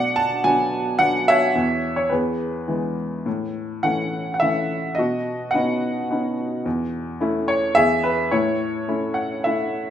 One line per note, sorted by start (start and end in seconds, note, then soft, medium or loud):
0.00 1.51 B2 medium
0.00 0.68 D5 medium
0.00 0.17 F#5 medium
0.16 0.45 A5 medium
0.44 0.98 F#3 soft
0.44 0.98 B3 soft
0.44 0.98 D4 medium
0.44 1.01 G#5 medium
0.99 1.54 F#3 soft
0.99 1.54 B3 soft
0.99 1.54 D4 soft
0.99 1.28 F#5 medium
1.28 1.95 C#5 medium
1.28 2.00 E5 loud
1.55 2.10 E2 medium
1.96 2.11 C#5 medium
2.10 3.23 E2 medium
2.10 2.94 G#4 soft
2.10 2.93 B4 medium
2.68 3.24 E3 soft
2.68 3.25 G#3 soft
2.68 3.25 B3 soft
3.26 4.94 A2 medium
3.83 4.39 E3 soft
3.83 4.40 A3 soft
3.83 4.40 C#4 soft
3.83 4.33 F#5 medium
4.34 4.41 F#5 medium
4.40 4.97 E3 soft
4.40 4.97 A3 soft
4.40 4.97 C#4 soft
4.40 4.99 E5 medium
4.95 6.61 B2 medium
4.95 5.53 D#5 medium
4.99 5.79 F#4 medium
5.51 6.08 B3 soft
5.51 6.09 C#4 soft
5.51 6.09 D#4 soft
5.51 6.34 D#5 medium
5.51 6.32 F#5 medium
6.10 6.64 B3 soft
6.10 6.64 C#4 soft
6.10 6.64 D#4 soft
6.66 7.73 E2 medium
7.21 7.75 A3 soft
7.21 7.75 C#4 soft
7.21 7.75 E4 medium
7.48 7.77 C#5 medium
7.75 8.31 E2 medium
7.75 8.28 G#4 medium
7.75 8.04 E5 loud
8.04 8.33 B4 medium
8.31 9.90 A2 medium
8.31 8.87 E4 medium
8.31 9.71 C#5 medium
8.88 9.44 A3 soft
8.88 9.44 C#4 soft
8.88 9.44 E4 soft
9.14 9.45 F#5 medium
9.44 9.90 A3 soft
9.44 9.90 C#4 soft
9.44 9.90 E4 soft
9.44 9.90 E5 medium